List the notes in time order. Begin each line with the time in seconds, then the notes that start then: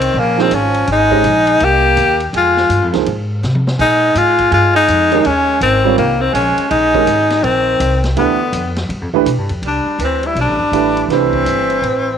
Already playing: C2 D#3 C4
0.01 ride
0.14 A#1 C#3
0.19 A#3
0.38 D#3 F3 A#3 C4 D#4 G#4 C5, snare
0.51 G#1 F3 C#4, hi-hat pedal, ride
0.74 ride
0.87 G#1 G#3, ride
0.92 D#4
1.11 G#3 C#4 G4 C5 D#5, kick
1.24 A#1, hi-hat pedal, ride
1.47 ride
1.60 C2 A#3 G4, ride
1.97 D#2, hi-hat pedal, ride
2.20 ride
2.33 F2 G#3 F4, ride
2.57 snare
2.69 G2, hi-hat pedal, ride
2.82 F2
2.93 C#2 F3 A#3 D#4 G#4 C5, snare, ride
3.06 G#2, ride
3.43 C3, snare, hi-hat pedal
3.55 high tom
3.67 snare
3.79 A#2 G#3 D#4, kick, crash
4.15 G#2 G#3 F4, hi-hat pedal, ride
4.39 kick, ride
4.51 G2 G#3 F4, ride
4.75 G#3 D#4
4.88 F2, hi-hat pedal, ride
5.11 D#3 G#3 C#4 G4 A#4, ride
5.23 D#2 G#3 C#4, ride
5.61 G#1 D#3 C4, hi-hat pedal, ride
5.85 G3 C4 F4 A#4 C#5
5.97 C2 D#3 A#3, ride
6.19 D#3 C4
6.32 A#1 G#3 C#4, hi-hat pedal, ride
6.58 muted upright bass stroke, ride
6.69 A#1 G#3 D#4, ride
6.94 D#3 G#3 C#4 G4 A#4, kick
7.07 G#1, hi-hat pedal, ride
7.30 snare, ride
7.42 A#1 D#3 C4, ride
7.80 C2, hi-hat pedal, ride
8.04 snare, ride
8.16 D2 D3 E3 A3 B3 D4 G4 B4, ride
8.53 F2, hi-hat pedal, ride
8.76 snare, ride
8.89 G2, ride
9.01 F2
9.13 D2 E3 A3 D4 G4 B4
9.26 B2, hi-hat pedal, ride
9.38 G2
9.49 F2, ride
9.62 C2 G3, ride
9.68 D4
9.85 muted upright bass stroke
9.99 D2 E3, hi-hat pedal, ride
10.04 C4
10.23 G3 E4, ride
10.35 B1 G3, ride
10.40 D4
10.47 A1
10.60 G1
10.72 A1 E3 A3 D4 G4 B4, hi-hat pedal, ride
10.97 ride
11.09 C2 E3 A3 D4 G4 B4, snare, ride
11.13 C4
11.33 kick
11.45 G1, hi-hat pedal, ride
11.70 ride
11.82 A1, ride